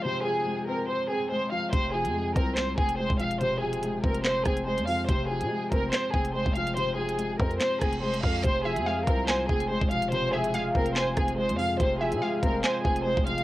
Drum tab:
HH |----------------|x--x--x-x--x--xx|x--xx--x--xx-xo-|x--x--x-x--x--xx|
CP |----------------|--------x-------|--------x-------|--------x-------|
SD |----------------|--------o-------|--------o-r-----|--------o-------|
BD |----------------|o-----o---o--o--|------o---o-----|o-----o---o--o--|

HH |x--xx--xx-xx-x--|x--x--x-x--x--xx|x--xx--x--xx-xo-|x--x--x-x--x--xx|
CP |--------x-------|--------x-------|--------x-------|--------x-------|
SD |--------o-r-----|--------o-------|--------o-r-----|--------o-------|
BD |------o---o---o-|o-----o---o--o--|------o---o-----|o-----o---o--o--|